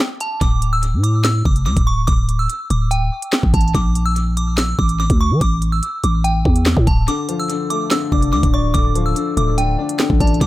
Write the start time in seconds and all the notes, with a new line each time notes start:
Already playing: G5
0.20 A5, closed hi-hat
0.41 D1 D6, kick, closed hi-hat
0.62 closed hi-hat
0.73 E6
0.83 closed hi-hat
0.93 A2
1.03 D6, closed hi-hat
1.24 E6, snare, clap, closed hi-hat
1.45 F1 D6, kick
1.56 closed hi-hat
1.66 D2 D6
1.77 D1, kick, closed hi-hat
1.87 C#6
2.07 D1 D6, kick, closed hi-hat
2.29 closed hi-hat
2.39 E6
2.50 closed hi-hat
2.70 D1 D6, closed hi-hat
2.91 G5, closed hi-hat
3.22 closed hi-hat
3.32 snare, clap
3.43 A1, kick
3.54 A1 A5, kick, closed hi-hat
3.61 closed hi-hat
3.68 closed hi-hat
3.75 A#1 D6, kick, closed hi-hat
3.95 closed hi-hat
4.06 E6
4.16 closed hi-hat
4.37 D6, closed hi-hat
4.57 E6, snare, clap, closed hi-hat
4.79 A1 D6, kick
4.89 closed hi-hat
5.00 D6
5.10 D2, kick, closed hi-hat
5.21 C#6
5.31 F3
5.41 A1 D6, kick, closed hi-hat
5.62 closed hi-hat
5.72 E6
5.83 closed hi-hat
6.04 A1 D6, closed hi-hat
6.24 G5, closed hi-hat
6.45 E2, kick
6.56 closed hi-hat
6.66 snare, clap
6.77 A2, kick
6.87 D1 A5, kick, closed hi-hat
7.08 D3 D6, closed hi-hat
7.29 F3, closed hi-hat
7.40 E6
7.50 D3, closed hi-hat
7.70 A3 D6, closed hi-hat
7.91 D3 E6, snare, clap, closed hi-hat
8.12 F1 D4 D6, kick
8.22 closed hi-hat
8.33 D2 D3 D6
8.43 D1, kick, closed hi-hat
8.54 D5 C#6
8.74 D1 D3 D6, kick, closed hi-hat
8.95 F3, closed hi-hat
9.06 E6
9.16 D3, closed hi-hat
9.37 D1 A3 D6, closed hi-hat
9.58 D3 G5, closed hi-hat
9.79 D4
9.89 closed hi-hat
9.99 D3, snare, clap
10.10 A1, kick
10.20 A1 D5 A5, kick, closed hi-hat
10.27 closed hi-hat
10.34 closed hi-hat
10.41 A#1 D3 D6, kick, closed hi-hat